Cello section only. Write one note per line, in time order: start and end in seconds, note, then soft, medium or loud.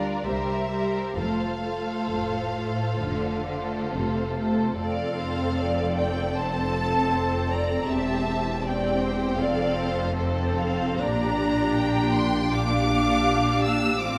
0.00 0.14 D2 soft
0.26 1.04 C2 soft
1.18 1.97 F2 soft
2.10 2.99 A2 soft
3.03 3.92 D3 soft
3.95 4.81 C3 soft
4.82 7.86 F2 soft
7.91 9.37 E2 soft
9.40 11.01 F2 soft
11.01 14.01 A#2 soft
14.01 14.18 A2 soft